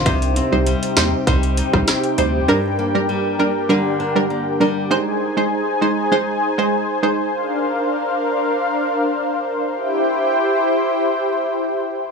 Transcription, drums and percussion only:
0.06 kick, closed hi-hat
0.22 closed hi-hat
0.36 closed hi-hat
0.67 closed hi-hat
0.83 closed hi-hat
0.97 cross-stick, snare, closed hi-hat
1.27 kick, closed hi-hat
1.43 closed hi-hat
1.57 closed hi-hat
1.73 kick, cross-stick
1.88 cross-stick, snare, closed hi-hat
2.04 closed hi-hat
2.18 closed hi-hat

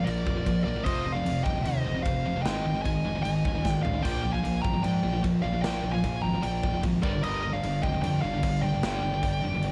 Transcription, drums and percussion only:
0.07 crash
0.27 kick
0.46 kick, crash
0.86 kick, crash
1.26 crash
1.46 kick
1.65 crash
2.06 kick, crash
2.45 snare, crash
2.85 kick, crash
3.25 crash
3.45 kick
3.65 kick, snare
3.85 floor tom
4.05 kick, splash, crash
4.45 crash
4.65 kick
4.84 crash
5.24 kick, crash
5.64 snare, crash
6.04 kick, crash
6.43 crash
6.64 kick
6.83 kick, crash
7.03 kick
7.23 crash
7.63 crash
7.83 kick
8.04 crash
8.43 kick, crash
8.83 snare, crash
9.23 kick, crash
9.62 crash

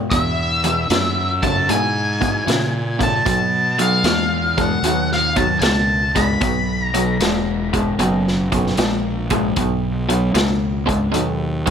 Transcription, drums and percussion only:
0.11 kick, closed hi-hat
0.64 closed hi-hat
0.90 snare, closed hi-hat
1.43 kick, closed hi-hat
1.69 closed hi-hat
2.22 kick, closed hi-hat
2.48 snare, closed hi-hat
3.01 kick, closed hi-hat
3.26 kick, closed hi-hat
3.79 closed hi-hat
4.04 snare, closed hi-hat
4.58 kick, closed hi-hat
4.84 closed hi-hat
5.12 snare
5.36 kick, closed hi-hat
5.62 snare, closed hi-hat
6.16 kick, closed hi-hat
6.41 kick, closed hi-hat
6.94 closed hi-hat
7.21 snare, closed hi-hat
7.74 kick, closed hi-hat
7.99 closed hi-hat
8.28 snare
8.52 kick, closed hi-hat
8.67 snare
8.77 snare, closed hi-hat
9.30 kick, closed hi-hat
9.56 kick, closed hi-hat
10.10 closed hi-hat
10.35 snare, closed hi-hat
10.89 kick, closed hi-hat
11.14 closed hi-hat
11.67 closed hi-hat

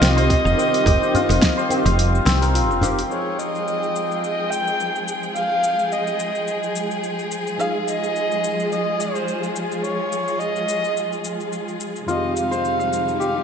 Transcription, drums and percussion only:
0.02 snare, open hi-hat, djembe slap, cabasa
0.18 open hi-hat, cabasa
0.30 kick, open hi-hat, cabasa
0.46 cabasa
0.59 cabasa
0.74 open hi-hat, cabasa
0.86 kick, open hi-hat, cabasa
1.03 cabasa
1.15 open hi-hat, djembe bass, cabasa
1.29 open hi-hat, djembe slap, djembe tone, cabasa
1.42 kick, snare, open hi-hat, cabasa
1.59 cabasa
1.70 open hi-hat, djembe tone, cabasa
1.86 open hi-hat, cabasa
1.99 open hi-hat, cabasa
2.15 cabasa
2.25 snare, open hi-hat, djembe tone, cabasa
2.42 open hi-hat, djembe slap, cabasa
2.55 open hi-hat, cabasa
2.71 djembe slap, djembe tone, cabasa
2.82 open hi-hat, djembe bass, cabasa
2.99 open hi-hat, cabasa
3.11 cabasa
3.39 cabasa
3.55 cabasa
3.68 cabasa
3.83 cabasa
3.96 cabasa
4.11 cabasa
4.24 cabasa
4.52 cabasa
4.68 cabasa
4.80 cabasa
4.96 cabasa
5.08 cabasa
5.23 cabasa
5.36 cabasa
5.64 cabasa
5.79 cabasa
5.92 cabasa
6.07 cabasa
6.20 cabasa
6.35 cabasa
6.48 cabasa
6.63 cabasa
6.75 cabasa
6.91 cabasa
7.04 cabasa
7.19 cabasa
7.31 cabasa
7.47 cabasa
7.60 cabasa
7.88 cabasa
8.04 cabasa
8.16 cabasa
8.32 cabasa
8.44 cabasa
8.60 cabasa
8.72 cabasa
9.00 cabasa
9.16 cabasa
9.28 cabasa
9.43 cabasa
9.56 cabasa
9.72 cabasa
9.84 cabasa
10.12 cabasa
10.28 cabasa
10.40 cabasa
10.56 cabasa
10.68 cabasa
10.84 cabasa
10.97 cabasa
11.12 cabasa
11.24 cabasa
11.40 cabasa
11.53 cabasa
11.68 cabasa
11.80 cabasa
11.96 cabasa
12.09 cabasa
12.37 cabasa
12.52 cabasa
12.65 cabasa
12.80 cabasa
12.93 cabasa
13.08 cabasa
13.21 cabasa

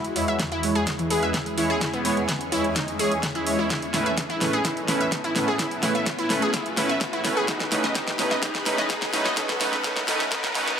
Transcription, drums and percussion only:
0.04 closed hi-hat
0.16 open hi-hat
0.28 closed hi-hat
0.39 kick, snare, closed hi-hat
0.52 closed hi-hat
0.63 open hi-hat
0.75 closed hi-hat
0.87 kick, snare, closed hi-hat
0.99 closed hi-hat
1.10 open hi-hat
1.23 closed hi-hat
1.34 kick, snare, closed hi-hat
1.46 closed hi-hat
1.58 open hi-hat
1.81 kick, snare, closed hi-hat
1.93 closed hi-hat
2.05 open hi-hat
2.17 closed hi-hat
2.29 kick, snare, closed hi-hat
2.41 closed hi-hat
2.52 open hi-hat
2.64 closed hi-hat
2.76 kick, snare, closed hi-hat
2.88 closed hi-hat
2.99 open hi-hat
3.12 closed hi-hat
3.23 kick, snare, closed hi-hat
3.35 closed hi-hat
3.47 open hi-hat
3.70 kick, snare, closed hi-hat
3.82 closed hi-hat
3.94 snare, open hi-hat
4.06 closed hi-hat
4.17 kick, snare, closed hi-hat
4.30 closed hi-hat
4.41 snare, open hi-hat
4.53 closed hi-hat
4.65 kick, snare, closed hi-hat
4.77 closed hi-hat
4.88 snare, open hi-hat
5.01 closed hi-hat
5.12 kick, snare, closed hi-hat
5.24 closed hi-hat
5.36 snare, open hi-hat
5.59 kick, snare, closed hi-hat
5.71 closed hi-hat
5.83 snare, open hi-hat
5.95 closed hi-hat
6.06 kick, snare, closed hi-hat
6.19 closed hi-hat
6.30 snare, open hi-hat
6.42 closed hi-hat
6.54 kick, snare, closed hi-hat
6.66 closed hi-hat
6.77 snare, open hi-hat
6.89 closed hi-hat
7.01 kick, snare, closed hi-hat
7.13 closed hi-hat
7.25 snare, open hi-hat
7.48 kick, snare, closed hi-hat
7.60 snare, closed hi-hat
7.72 snare, open hi-hat
7.84 snare, closed hi-hat
7.95 kick, snare, closed hi-hat
8.07 snare, closed hi-hat
8.19 snare, open hi-hat
8.31 snare, closed hi-hat
8.43 kick, snare, closed hi-hat
8.55 snare, closed hi-hat
8.66 snare, open hi-hat
8.78 snare, closed hi-hat
8.90 kick, snare, closed hi-hat
9.02 snare, closed hi-hat
9.13 snare, open hi-hat
9.26 snare
9.37 kick, snare, closed hi-hat
9.49 snare, closed hi-hat
9.61 snare, open hi-hat
9.73 snare, closed hi-hat
9.84 kick, snare, closed hi-hat
9.96 snare, closed hi-hat
10.08 snare, open hi-hat
10.20 snare, closed hi-hat
10.32 kick, snare, closed hi-hat
10.44 snare, closed hi-hat
10.55 snare, open hi-hat
10.68 snare, closed hi-hat

